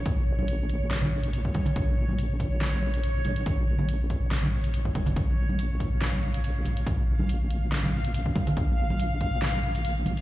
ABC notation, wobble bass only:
X:1
M:4/4
L:1/8
Q:"Swing 16ths" 1/4=141
K:Bbm
V:1 name="Wobble bass" clef=bass
B,,,6- B,,, z | B,,,6- B,,, B,,, | B,,,6- B,,, F,,, | B,,,6- B,,, B,,, |
B,,,6- B,,, z | B,,,6- B,,, B,,, |]